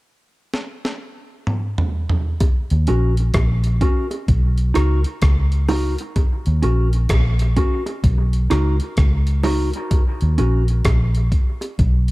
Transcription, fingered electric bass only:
2.71 2.87 D#2 medium
2.89 3.32 A#1 medium
3.35 3.78 A#1 loud
4.29 4.72 B1 medium
4.76 5.04 C#2 medium
5.23 5.95 C#2 medium
6.47 6.62 D#2 medium
6.64 7.07 A#1 medium
7.10 7.54 A#1 loud
8.04 8.48 B1 loud
8.52 8.79 C#2 medium
8.98 9.70 C#2 medium
10.22 10.38 D#2 medium
10.39 10.83 A#1 medium
10.85 11.29 A#1 loud
11.79 12.12 B1 loud

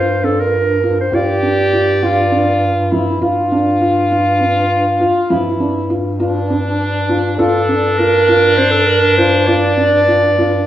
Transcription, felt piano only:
0.00 0.12 F4 medium
0.23 0.60 D4 medium
0.84 1.02 F4 medium
1.13 1.31 F4 medium
1.43 1.61 D4 medium
1.73 1.91 F4 medium
2.02 2.21 F4 medium
2.32 2.68 D4 medium
2.92 3.10 F3 medium
3.21 3.40 F4 medium
3.52 3.70 D4 medium
3.81 4.00 F4 medium
4.12 4.30 F4 medium
4.41 4.77 D4 medium
5.00 5.19 F4 medium
5.30 5.48 F3 medium
5.60 5.78 D4 medium
5.90 6.08 F4 medium
6.20 6.38 F4 medium
6.50 6.86 D4 medium
7.09 7.27 F4 medium
7.39 7.57 F4 loud
7.69 7.87 D4 medium
7.99 8.17 F4 medium
8.29 8.47 F4 medium
8.58 8.95 D4 medium
9.18 9.36 F4 medium
9.48 9.66 F4 medium
9.77 9.96 D4 medium
10.08 10.26 F4 medium
10.38 10.56 F4 medium

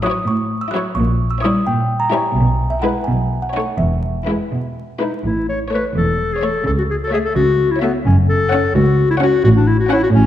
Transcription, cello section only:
0.00 0.14 A2 medium
0.28 0.82 A2 medium
0.97 1.52 A#2 medium
1.66 2.21 A#2 medium
2.36 2.92 B2 medium
3.07 3.65 B2 medium
3.80 4.37 E2 soft
4.53 5.11 B2 soft
5.25 5.81 A2 soft
5.96 6.52 E2 soft
6.66 7.21 C#3 medium
7.36 7.91 C#3 medium
8.05 8.60 F#2 medium
8.74 9.29 C#2 medium
9.44 9.99 A2 medium
10.13 10.26 A2 medium

